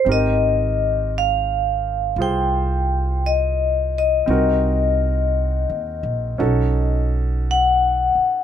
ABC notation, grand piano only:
X:1
M:4/4
L:1/8
Q:"Swing" 1/4=57
K:Ab
V:1 name="Grand piano"
[CEGB]4 [FAc]4 | [CE_GB]4 [^C^D^F=A]4 |]